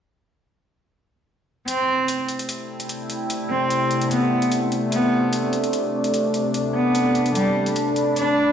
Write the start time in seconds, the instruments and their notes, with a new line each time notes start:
1.68 ambient pad C3 A3 E4 A4, cello C4, closed hi-hat
1.81 ambient pad D5
1.88 ambient pad G5
2.08 closed hi-hat
2.29 closed hi-hat
2.39 closed hi-hat
2.49 closed hi-hat
2.80 closed hi-hat
2.89 closed hi-hat
2.98 ambient pad C6
3.10 closed hi-hat
3.30 closed hi-hat
3.50 cello C4
3.70 closed hi-hat
3.91 closed hi-hat
4.01 closed hi-hat
4.11 cello B3, closed hi-hat
4.42 closed hi-hat
4.52 closed hi-hat
4.60 ambient pad A5
4.72 closed hi-hat
4.92 cello B3, ambient pad D4, closed hi-hat
5.33 closed hi-hat
5.53 closed hi-hat
5.64 closed hi-hat
5.73 closed hi-hat
6.01 ambient pad B5, closed hi-hat
6.14 closed hi-hat
6.34 closed hi-hat
6.54 closed hi-hat
6.74 cello B3
6.95 closed hi-hat
7.15 closed hi-hat
7.26 closed hi-hat
7.35 cello G3, closed hi-hat
7.66 closed hi-hat
7.76 closed hi-hat
7.96 closed hi-hat
8.16 ambient pad A2 G3, cello D4, closed hi-hat